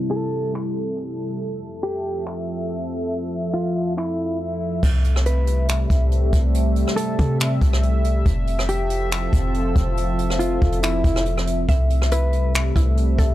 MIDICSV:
0, 0, Header, 1, 6, 480
1, 0, Start_track
1, 0, Key_signature, 0, "major"
1, 0, Tempo, 428571
1, 1569, Time_signature, 4, 2, 24, 8
1, 14945, End_track
2, 0, Start_track
2, 0, Title_t, "Clean electric guitar"
2, 0, Program_c, 0, 27
2, 120, Note_on_c, 0, 69, 91
2, 576, Note_off_c, 0, 69, 0
2, 2051, Note_on_c, 0, 67, 79
2, 2501, Note_off_c, 0, 67, 0
2, 3960, Note_on_c, 0, 65, 84
2, 4416, Note_off_c, 0, 65, 0
2, 4452, Note_on_c, 0, 64, 89
2, 4902, Note_off_c, 0, 64, 0
2, 5893, Note_on_c, 0, 71, 82
2, 6343, Note_off_c, 0, 71, 0
2, 7800, Note_on_c, 0, 69, 97
2, 8256, Note_off_c, 0, 69, 0
2, 9731, Note_on_c, 0, 67, 86
2, 10181, Note_off_c, 0, 67, 0
2, 11640, Note_on_c, 0, 65, 89
2, 12096, Note_off_c, 0, 65, 0
2, 12132, Note_on_c, 0, 64, 92
2, 12582, Note_off_c, 0, 64, 0
2, 13575, Note_on_c, 0, 71, 81
2, 14024, Note_off_c, 0, 71, 0
2, 14945, End_track
3, 0, Start_track
3, 0, Title_t, "Synth pluck"
3, 0, Program_c, 1, 84
3, 13087, Note_on_c, 1, 76, 96
3, 13573, Note_on_c, 1, 64, 82
3, 14274, Note_off_c, 1, 64, 0
3, 14287, Note_on_c, 1, 64, 73
3, 14528, Note_off_c, 1, 76, 0
3, 14766, Note_on_c, 1, 69, 84
3, 14945, Note_off_c, 1, 64, 0
3, 14945, Note_off_c, 1, 69, 0
3, 14945, End_track
4, 0, Start_track
4, 0, Title_t, "Analog synth pad"
4, 0, Program_c, 2, 89
4, 0, Note_on_c, 2, 48, 83
4, 0, Note_on_c, 2, 55, 75
4, 0, Note_on_c, 2, 64, 75
4, 0, Note_on_c, 2, 69, 92
4, 1531, Note_off_c, 2, 48, 0
4, 1531, Note_off_c, 2, 55, 0
4, 1531, Note_off_c, 2, 64, 0
4, 1569, Note_on_c, 2, 41, 80
4, 1569, Note_on_c, 2, 53, 73
4, 1570, Note_on_c, 2, 76, 75
4, 5365, Note_off_c, 2, 69, 0
4, 5371, Note_off_c, 2, 41, 0
4, 5371, Note_off_c, 2, 53, 0
4, 5371, Note_off_c, 2, 76, 0
4, 5409, Note_on_c, 2, 48, 84
4, 5409, Note_on_c, 2, 55, 80
4, 5409, Note_on_c, 2, 57, 79
4, 5409, Note_on_c, 2, 76, 92
4, 9211, Note_off_c, 2, 48, 0
4, 9211, Note_off_c, 2, 55, 0
4, 9211, Note_off_c, 2, 57, 0
4, 9249, Note_on_c, 2, 53, 84
4, 9249, Note_on_c, 2, 69, 93
4, 9250, Note_on_c, 2, 60, 82
4, 13051, Note_off_c, 2, 53, 0
4, 13051, Note_off_c, 2, 60, 0
4, 13051, Note_off_c, 2, 69, 0
4, 13089, Note_on_c, 2, 48, 86
4, 13089, Note_on_c, 2, 55, 78
4, 13089, Note_on_c, 2, 57, 78
4, 14945, Note_off_c, 2, 48, 0
4, 14945, Note_off_c, 2, 55, 0
4, 14945, Note_off_c, 2, 57, 0
4, 14945, Note_off_c, 2, 76, 0
4, 14945, End_track
5, 0, Start_track
5, 0, Title_t, "808-style bass"
5, 0, Program_c, 3, 38
5, 5410, Note_on_c, 3, 36, 119
5, 6565, Note_off_c, 3, 36, 0
5, 6609, Note_on_c, 3, 36, 104
5, 7070, Note_off_c, 3, 36, 0
5, 7089, Note_on_c, 3, 36, 101
5, 7666, Note_off_c, 3, 36, 0
5, 8053, Note_on_c, 3, 48, 104
5, 8512, Note_off_c, 3, 48, 0
5, 8528, Note_on_c, 3, 36, 109
5, 9220, Note_off_c, 3, 36, 0
5, 9249, Note_on_c, 3, 29, 118
5, 10405, Note_off_c, 3, 29, 0
5, 10448, Note_on_c, 3, 29, 102
5, 10910, Note_off_c, 3, 29, 0
5, 10929, Note_on_c, 3, 29, 104
5, 11851, Note_off_c, 3, 29, 0
5, 11893, Note_on_c, 3, 29, 107
5, 12352, Note_off_c, 3, 29, 0
5, 12368, Note_on_c, 3, 29, 104
5, 13060, Note_off_c, 3, 29, 0
5, 13089, Note_on_c, 3, 36, 118
5, 14245, Note_off_c, 3, 36, 0
5, 14289, Note_on_c, 3, 36, 111
5, 14750, Note_off_c, 3, 36, 0
5, 14769, Note_on_c, 3, 36, 103
5, 14945, Note_off_c, 3, 36, 0
5, 14945, End_track
6, 0, Start_track
6, 0, Title_t, "Drums"
6, 619, Note_on_c, 9, 26, 110
6, 731, Note_off_c, 9, 26, 0
6, 2540, Note_on_c, 9, 26, 111
6, 2652, Note_off_c, 9, 26, 0
6, 4459, Note_on_c, 9, 26, 112
6, 4571, Note_off_c, 9, 26, 0
6, 5409, Note_on_c, 9, 36, 109
6, 5409, Note_on_c, 9, 49, 102
6, 5521, Note_off_c, 9, 36, 0
6, 5521, Note_off_c, 9, 49, 0
6, 5650, Note_on_c, 9, 42, 66
6, 5762, Note_off_c, 9, 42, 0
6, 5779, Note_on_c, 9, 37, 100
6, 5887, Note_on_c, 9, 42, 88
6, 5891, Note_off_c, 9, 37, 0
6, 5999, Note_off_c, 9, 42, 0
6, 6127, Note_on_c, 9, 42, 76
6, 6239, Note_off_c, 9, 42, 0
6, 6368, Note_on_c, 9, 42, 84
6, 6380, Note_on_c, 9, 26, 122
6, 6480, Note_off_c, 9, 42, 0
6, 6492, Note_off_c, 9, 26, 0
6, 6609, Note_on_c, 9, 36, 100
6, 6611, Note_on_c, 9, 42, 77
6, 6721, Note_off_c, 9, 36, 0
6, 6723, Note_off_c, 9, 42, 0
6, 6849, Note_on_c, 9, 42, 61
6, 6961, Note_off_c, 9, 42, 0
6, 7089, Note_on_c, 9, 36, 101
6, 7089, Note_on_c, 9, 42, 81
6, 7201, Note_off_c, 9, 36, 0
6, 7201, Note_off_c, 9, 42, 0
6, 7330, Note_on_c, 9, 42, 76
6, 7442, Note_off_c, 9, 42, 0
6, 7570, Note_on_c, 9, 42, 73
6, 7682, Note_off_c, 9, 42, 0
6, 7700, Note_on_c, 9, 37, 99
6, 7809, Note_on_c, 9, 42, 91
6, 7812, Note_off_c, 9, 37, 0
6, 7921, Note_off_c, 9, 42, 0
6, 8047, Note_on_c, 9, 42, 71
6, 8053, Note_on_c, 9, 36, 91
6, 8159, Note_off_c, 9, 42, 0
6, 8165, Note_off_c, 9, 36, 0
6, 8288, Note_on_c, 9, 42, 80
6, 8300, Note_on_c, 9, 26, 121
6, 8400, Note_off_c, 9, 42, 0
6, 8412, Note_off_c, 9, 26, 0
6, 8529, Note_on_c, 9, 36, 98
6, 8531, Note_on_c, 9, 42, 76
6, 8641, Note_off_c, 9, 36, 0
6, 8643, Note_off_c, 9, 42, 0
6, 8659, Note_on_c, 9, 37, 105
6, 8769, Note_on_c, 9, 42, 61
6, 8771, Note_off_c, 9, 37, 0
6, 8881, Note_off_c, 9, 42, 0
6, 9009, Note_on_c, 9, 42, 79
6, 9121, Note_off_c, 9, 42, 0
6, 9249, Note_on_c, 9, 36, 109
6, 9249, Note_on_c, 9, 42, 79
6, 9361, Note_off_c, 9, 36, 0
6, 9361, Note_off_c, 9, 42, 0
6, 9490, Note_on_c, 9, 42, 70
6, 9602, Note_off_c, 9, 42, 0
6, 9619, Note_on_c, 9, 37, 106
6, 9728, Note_on_c, 9, 42, 93
6, 9731, Note_off_c, 9, 37, 0
6, 9840, Note_off_c, 9, 42, 0
6, 9967, Note_on_c, 9, 42, 77
6, 10079, Note_off_c, 9, 42, 0
6, 10207, Note_on_c, 9, 42, 85
6, 10219, Note_on_c, 9, 26, 116
6, 10319, Note_off_c, 9, 42, 0
6, 10331, Note_off_c, 9, 26, 0
6, 10448, Note_on_c, 9, 36, 99
6, 10450, Note_on_c, 9, 42, 81
6, 10560, Note_off_c, 9, 36, 0
6, 10562, Note_off_c, 9, 42, 0
6, 10689, Note_on_c, 9, 42, 64
6, 10801, Note_off_c, 9, 42, 0
6, 10929, Note_on_c, 9, 36, 108
6, 10929, Note_on_c, 9, 42, 82
6, 11041, Note_off_c, 9, 36, 0
6, 11041, Note_off_c, 9, 42, 0
6, 11170, Note_on_c, 9, 42, 78
6, 11282, Note_off_c, 9, 42, 0
6, 11409, Note_on_c, 9, 42, 71
6, 11521, Note_off_c, 9, 42, 0
6, 11538, Note_on_c, 9, 37, 99
6, 11647, Note_on_c, 9, 42, 95
6, 11650, Note_off_c, 9, 37, 0
6, 11759, Note_off_c, 9, 42, 0
6, 11889, Note_on_c, 9, 42, 47
6, 11892, Note_on_c, 9, 36, 93
6, 12001, Note_off_c, 9, 42, 0
6, 12004, Note_off_c, 9, 36, 0
6, 12008, Note_on_c, 9, 42, 75
6, 12120, Note_off_c, 9, 42, 0
6, 12127, Note_on_c, 9, 42, 84
6, 12139, Note_on_c, 9, 26, 116
6, 12239, Note_off_c, 9, 42, 0
6, 12251, Note_off_c, 9, 26, 0
6, 12368, Note_on_c, 9, 36, 95
6, 12370, Note_on_c, 9, 42, 80
6, 12480, Note_off_c, 9, 36, 0
6, 12482, Note_off_c, 9, 42, 0
6, 12498, Note_on_c, 9, 37, 104
6, 12608, Note_on_c, 9, 42, 61
6, 12610, Note_off_c, 9, 37, 0
6, 12720, Note_off_c, 9, 42, 0
6, 12740, Note_on_c, 9, 37, 100
6, 12848, Note_on_c, 9, 42, 82
6, 12852, Note_off_c, 9, 37, 0
6, 12960, Note_off_c, 9, 42, 0
6, 13089, Note_on_c, 9, 36, 107
6, 13089, Note_on_c, 9, 42, 76
6, 13201, Note_off_c, 9, 36, 0
6, 13201, Note_off_c, 9, 42, 0
6, 13330, Note_on_c, 9, 42, 69
6, 13442, Note_off_c, 9, 42, 0
6, 13459, Note_on_c, 9, 37, 101
6, 13567, Note_on_c, 9, 42, 92
6, 13571, Note_off_c, 9, 37, 0
6, 13679, Note_off_c, 9, 42, 0
6, 13807, Note_on_c, 9, 42, 73
6, 13919, Note_off_c, 9, 42, 0
6, 14048, Note_on_c, 9, 42, 82
6, 14060, Note_on_c, 9, 26, 117
6, 14160, Note_off_c, 9, 42, 0
6, 14172, Note_off_c, 9, 26, 0
6, 14289, Note_on_c, 9, 36, 93
6, 14290, Note_on_c, 9, 42, 77
6, 14401, Note_off_c, 9, 36, 0
6, 14402, Note_off_c, 9, 42, 0
6, 14529, Note_on_c, 9, 42, 62
6, 14641, Note_off_c, 9, 42, 0
6, 14769, Note_on_c, 9, 36, 106
6, 14769, Note_on_c, 9, 42, 80
6, 14881, Note_off_c, 9, 36, 0
6, 14881, Note_off_c, 9, 42, 0
6, 14945, End_track
0, 0, End_of_file